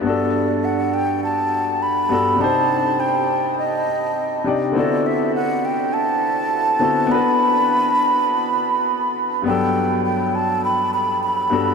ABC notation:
X:1
M:4/4
L:1/8
Q:"Swing 16ths" 1/4=102
K:G
V:1 name="Flute"
d2 f g a2 b2 | a2 g2 _e3 z | d e f g a4 | b6- b z |
g2 g a b b b2 |]
V:2 name="Grand piano"
[G,,B,DFA]6- [G,,B,DFA] [G,,B,DFA] | [C,D_EGc]4- [C,DEGc] z2 [C,DEGd] | [D,B,CEFA]6- [D,B,CEFA] [D,B,CEFA] | [B,DFB]4- [B,DFB] z3 |
[G,,F,B,DA]6- [G,,F,B,DA] [G,,B,DFA] |]